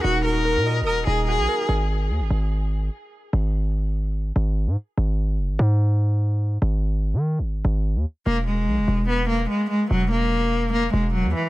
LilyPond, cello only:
\new Staff \with { instrumentName = "Cello" } { \time 4/4 \key e \lydian \tempo 4 = 146 fis'8 ais'4. ais'8 gis'8 gis'4 | r1 | r1 | r1 |
r1 | ais8 gis4. b8 ais8 gis8 gis8 | fis8 ais4. ais8 gis8 fis8 e8 | }